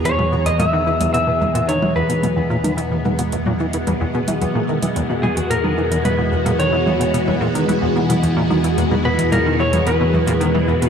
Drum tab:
HH |x--xx--xx--xx--x|x--xx--xx--xx--x|x--xx--xx--xx--x|x--xx--xx--xx--x|
T1 |-o--o--o--o--o--|o--o--o--o--o--o|o--o--o--o--o--o|--o--o--o--o--o-|

HH |x--xx--xx--xx--x|
T1 |-o--o--o--o--o--|